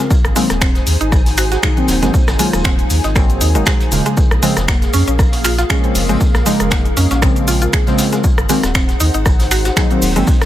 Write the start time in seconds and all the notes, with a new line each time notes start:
0.10 D#4 G#4 C5 G#5, kick, shaker
0.25 G#1, cross-stick, shaker
0.35 D#3 F#3 G#3 A#3 C4, open hi-hat, shaker
0.50 D#1, cross-stick, snare, closed hi-hat, shaker
0.61 C4, finger snap, kick, snare, shaker
0.75 snare, closed hi-hat, shaker
0.87 D#2, open hi-hat, shaker
1.01 G#1 D#4, closed hi-hat, shaker
1.12 kick, cross-stick, shaker
1.26 snare, open hi-hat, shaker
1.37 F#4, finger snap, open hi-hat, shaker
1.52 F#4, snare, closed hi-hat, shaker
1.62 D#3 F#3 A#3 D#4 G#4, finger snap, kick, snare, shaker
1.76 D#3 F#3 A#3 C4, closed hi-hat, shaker
1.88 D#1, snare, open hi-hat, shaker
2.02 G#1 D#3 F#3 G#3 A#3 C4, snare, closed hi-hat, shaker
2.14 kick, shaker
2.28 G#1, cross-stick, snare, closed hi-hat, shaker
2.38 D#3 F#3 G#3 A#3 F4, snare, open hi-hat, shaker
2.53 D#1, cross-stick, closed hi-hat, shaker
2.64 C4, finger snap, kick, snare, shaker
2.79 closed hi-hat, shaker
2.90 D#2, open hi-hat, shaker
3.04 G#1 D#4, snare, closed hi-hat, shaker
3.15 D#3 F#3 A#3 C4, finger snap, kick, cross-stick, shaker
3.30 closed hi-hat, shaker
3.41 D#2 D#4, open hi-hat, shaker
3.55 F#1 D#3 F#3 G#3 A#3 D#4, closed hi-hat, shaker
3.66 G#3, finger snap, kick, snare, shaker
3.81 closed hi-hat, shaker
3.91 D#1 C#3 F3 G#3 A#3, open hi-hat, shaker
4.06 G#3, closed hi-hat, shaker
4.17 A#3 A#4 F5, kick, shaker
4.31 A#1, cross-stick, shaker
4.42 C#3 F3 G#3 C4, open hi-hat, shaker
4.57 F1, cross-stick, snare, closed hi-hat, shaker
4.68 A#3, finger snap, kick, snare, shaker
4.82 snare, closed hi-hat, shaker
4.93 F2 C#4, open hi-hat, shaker
5.08 A#1 C#4, closed hi-hat, shaker
5.19 kick, cross-stick, shaker
5.32 snare, open hi-hat, shaker
5.44 F4, finger snap, open hi-hat, shaker
5.58 F4, snare, closed hi-hat, shaker
5.69 C#3 F3 G#3 C#4 G#4, finger snap, kick, snare, shaker
5.83 C#3 F3 G#3 C4, closed hi-hat, shaker
5.95 F1, open hi-hat, shaker
6.09 A#1 C#3 F3 G#3 C4, closed hi-hat, shaker
6.20 kick, shaker
6.34 A#1, cross-stick, snare, shaker
6.45 C#3 F3 G#3 D#4, open hi-hat, shaker
6.60 F1, cross-stick, closed hi-hat, shaker
6.71 A#3, finger snap, kick, snare, shaker
6.85 closed hi-hat, shaker
6.97 F2 C#4, open hi-hat, shaker
7.11 A#1 C#4, snare, closed hi-hat, shaker
7.21 C#3 F3 G#3 C4, finger snap, kick, cross-stick, shaker
7.36 closed hi-hat, shaker
7.48 F4, open hi-hat, shaker
7.62 F4, closed hi-hat, shaker
7.73 G#4, finger snap, kick, shaker
7.87 C#3 F3 G#3 C4, snare, closed hi-hat, shaker
7.98 snare, open hi-hat, shaker
8.13 G#3, snare, closed hi-hat, shaker
8.24 D#4 C5 F#5, kick, shaker
8.38 G#1, cross-stick, shaker
8.49 D#3 F#3 G#3 A#3 C4, open hi-hat, shaker
8.63 D#1, cross-stick, snare, closed hi-hat, shaker
8.74 C4, finger snap, kick, snare, shaker
8.89 snare, closed hi-hat, shaker
9.00 D#2 D#4, open hi-hat, shaker
9.14 G#1 D#4, closed hi-hat, shaker
9.26 kick, cross-stick, shaker
9.40 snare, open hi-hat, shaker
9.51 F#4, finger snap, open hi-hat, shaker
9.65 F#4, snare, closed hi-hat, shaker
9.76 D#3 F#3 A#3 D#4 G#4, finger snap, kick, snare, shaker
9.90 D#3 F#3 A#3 C4, closed hi-hat, shaker
10.02 D#1, open hi-hat, shaker
10.15 G#1 D#3 F#3 G#3 A#3 C4, closed hi-hat, shaker
10.27 F5, kick, shaker
10.41 G#1, cross-stick, snare, closed hi-hat, shaker